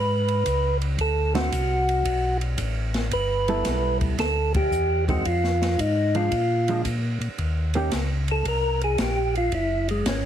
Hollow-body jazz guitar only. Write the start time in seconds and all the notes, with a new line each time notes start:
1.35 D3 A3 C4 F#4
3.48 G3 B3 E4 A4
5.08 D#3 G#3 C4
6.15 F3 G#3 D4
6.69 F3 G#3 D4
7.75 D#3 A#3 C#4 G4